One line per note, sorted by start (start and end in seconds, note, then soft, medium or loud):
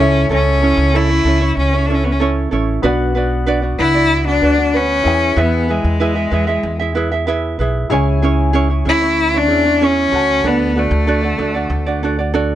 0.00 0.27 C#2 loud
0.00 0.30 C#4 medium
0.00 0.31 C#4 loud
0.00 2.48 C#4 medium
0.00 0.30 E4 medium
0.00 2.48 E4 medium
0.00 0.29 A4 medium
0.00 2.49 A4 medium
0.00 0.31 C#5 medium
0.00 2.50 E5 medium
0.29 0.73 C#2 loud
0.29 0.61 C#4 medium
0.29 0.62 E4 medium
0.29 0.60 A4 medium
0.29 0.62 C#5 medium
0.33 0.97 C#4 medium
0.62 0.94 C#4 medium
0.62 0.94 E4 medium
0.62 0.93 A4 medium
0.62 0.94 C#5 medium
0.77 1.21 C#2 loud
0.94 1.10 C#4 medium
0.94 1.09 E4 medium
0.94 1.58 E4 loud
0.94 1.10 A4 medium
0.94 1.08 C#5 medium
1.09 1.25 C#4 soft
1.09 1.26 E4 soft
1.09 1.25 C#5 soft
1.25 1.54 C#2 medium
1.25 1.41 C#4 medium
1.25 1.40 E4 medium
1.25 1.41 A4 medium
1.25 1.39 C#5 medium
1.41 1.73 C#4 soft
1.41 1.72 E4 soft
1.41 1.71 C#5 medium
1.57 2.48 C#2 medium
1.57 1.87 C#4 medium
1.73 1.88 C#4 medium
1.73 1.89 E4 medium
1.73 1.89 C#5 medium
1.86 2.05 C#4 medium
1.86 1.96 D4 medium
1.86 2.04 A4 medium
1.90 2.04 E4 medium
1.90 2.03 C#5 medium
1.95 2.06 C#4 medium
2.04 2.14 B3 medium
2.04 2.20 C#4 soft
2.04 2.20 E4 soft
2.04 2.20 C#5 soft
2.12 2.21 C#4 medium
2.20 2.51 C#4 medium
2.20 2.51 E4 medium
2.20 2.50 A4 medium
2.20 2.52 C#5 medium
2.51 2.81 A1 medium
2.51 2.83 C#4 medium
2.51 2.84 E4 medium
2.51 2.82 A4 medium
2.51 2.84 C#5 medium
2.82 3.75 B1 loud
2.82 5.01 B3 medium
2.82 3.15 D4 medium
2.82 5.02 F#4 medium
2.82 3.16 F#4 loud
2.82 3.14 B4 medium
2.82 5.02 B4 medium
2.82 3.16 D5 loud
2.86 5.03 F#5 medium
3.15 3.46 D4 medium
3.15 3.46 F#4 medium
3.15 3.45 B4 medium
3.15 3.47 D5 medium
3.46 3.63 D4 medium
3.46 3.62 F#4 loud
3.46 3.63 B4 medium
3.46 3.61 D5 loud
3.62 3.78 D4 soft
3.62 3.79 F#4 soft
3.62 3.78 D5 soft
3.78 4.38 C#2 medium
3.78 3.95 D4 medium
3.78 4.23 E4 loud
3.78 3.94 F#4 medium
3.78 3.94 B4 medium
3.78 3.93 D5 medium
3.94 4.27 D4 soft
3.94 4.26 F#4 medium
3.94 4.25 D5 medium
4.26 4.77 D4 loud
4.26 4.42 D4 soft
4.26 4.42 F#4 soft
4.26 4.42 D5 medium
4.42 5.01 D2 medium
4.42 4.58 D4 medium
4.42 4.57 F#4 medium
4.42 4.58 B4 medium
4.42 4.56 D5 medium
4.58 4.75 D4 soft
4.58 4.74 F#4 soft
4.58 4.73 D5 soft
4.74 5.41 C#4 loud
4.74 5.06 F#4 medium
4.74 5.03 B4 medium
5.03 5.35 E2 medium
5.03 7.54 E4 medium
5.03 5.36 E4 medium
5.03 7.55 G#4 medium
5.03 5.36 G#4 medium
5.03 5.35 B4 medium
5.03 7.55 B4 medium
5.03 5.37 E5 medium
5.08 5.13 G5 medium
5.14 7.59 G#5 medium
5.36 5.81 E2 loud
5.36 5.72 B3 medium
5.36 5.68 E4 medium
5.36 5.69 G#4 medium
5.36 5.67 B4 medium
5.36 5.69 E5 medium
5.69 6.96 G#3 medium
5.69 5.99 E4 medium
5.69 6.00 G#4 medium
5.69 5.99 B4 medium
5.69 6.00 E5 medium
5.84 6.28 E2 loud
6.00 6.16 E4 medium
6.00 6.15 G#4 medium
6.00 6.16 B4 medium
6.00 6.14 E5 medium
6.15 6.31 E4 soft
6.15 6.32 G#4 soft
6.15 6.32 E5 medium
6.31 6.61 E2 medium
6.31 6.48 E4 medium
6.31 6.47 G#4 medium
6.31 6.47 B4 medium
6.31 6.46 E5 medium
6.47 6.80 E4 medium
6.47 6.79 G#4 medium
6.47 6.78 E5 medium
6.63 7.55 E2 loud
6.80 6.94 E4 medium
6.80 6.95 G#4 medium
6.80 6.96 E5 medium
6.95 7.11 E4 medium
6.95 7.12 G#4 medium
6.95 7.11 B4 medium
6.95 7.10 E5 medium
7.12 7.26 E4 soft
7.12 7.27 G#4 medium
7.12 7.27 E5 medium
7.27 7.59 E4 medium
7.27 7.59 G#4 medium
7.27 7.58 B4 medium
7.27 7.60 E5 loud
7.59 7.88 B1 medium
7.59 7.90 E4 medium
7.59 7.89 G#4 medium
7.59 7.90 B4 medium
7.59 7.91 E5 medium
7.90 8.81 C#2 loud
7.90 8.22 C#4 medium
7.90 10.08 E4 medium
7.90 8.23 E4 loud
7.90 8.21 G#4 medium
7.90 10.08 G#4 medium
7.90 8.23 C#5 loud
7.90 10.09 C#5 medium
7.90 10.10 G#5 loud
8.22 8.53 C#4 medium
8.22 8.53 E4 medium
8.22 8.52 G#4 medium
8.22 8.54 C#5 medium
8.53 8.70 C#4 loud
8.53 8.70 E4 loud
8.53 8.69 G#4 loud
8.53 8.68 C#5 loud
8.70 8.85 C#4 soft
8.70 8.85 E4 medium
8.70 8.86 C#5 medium
8.85 9.49 D2 medium
8.85 9.02 C#4 medium
8.85 9.02 E4 medium
8.85 9.39 E4 loud
8.85 9.01 G#4 medium
8.85 9.00 C#5 medium
9.02 9.34 C#4 medium
9.02 9.33 E4 medium
9.02 9.33 C#5 medium
9.34 9.48 C#4 soft
9.34 9.86 D4 loud
9.34 9.49 E4 medium
9.34 9.49 C#5 medium
9.48 10.08 E2 medium
9.48 9.65 C#4 medium
9.48 9.65 E4 medium
9.48 9.64 G#4 medium
9.48 9.64 C#5 medium
9.65 9.80 C#4 soft
9.65 9.81 E4 soft
9.65 9.81 C#5 medium
9.81 10.13 C#4 medium
9.81 10.49 C#4 loud
9.81 10.13 E4 medium
9.81 10.12 G#4 medium
9.81 10.12 C#5 medium
10.12 10.41 D2 medium
10.12 12.55 F#4 medium
10.12 10.44 F#4 medium
10.12 10.43 A4 medium
10.12 12.55 A4 medium
10.12 12.55 F#5 medium
10.12 12.55 A5 medium
10.44 10.88 D2 loud
10.44 10.80 B3 medium
10.44 10.75 D4 medium
10.44 10.76 F#4 medium
10.44 10.75 A4 medium
10.44 10.77 D5 medium
10.76 12.04 A3 medium
10.76 11.07 D4 medium
10.76 11.07 F#4 medium
10.76 11.06 A4 medium
10.76 11.07 D5 medium
10.91 11.35 D2 loud
11.07 11.23 D4 medium
11.07 11.23 F#4 medium
11.07 11.23 A4 medium
11.07 11.22 D5 medium
11.23 11.38 D4 soft
11.23 11.39 F#4 soft
11.23 11.39 D5 medium
11.38 11.68 D2 loud
11.38 11.55 D4 medium
11.38 11.55 F#4 medium
11.38 11.54 A4 medium
11.38 11.53 D5 medium
11.54 11.87 D4 medium
11.54 11.86 F#4 medium
11.54 11.85 D5 medium
11.70 12.55 D2 loud
11.86 12.03 D4 medium
11.86 12.03 F#4 medium
11.86 12.02 D5 medium
12.03 12.19 D4 medium
12.03 12.18 F#4 medium
12.03 12.18 A4 medium
12.03 12.17 D5 medium
12.19 12.33 D4 soft
12.19 12.33 F#4 soft
12.19 12.34 D5 medium
12.34 12.55 D4 medium
12.34 12.55 F#4 medium
12.34 12.55 A4 medium
12.34 12.55 D5 medium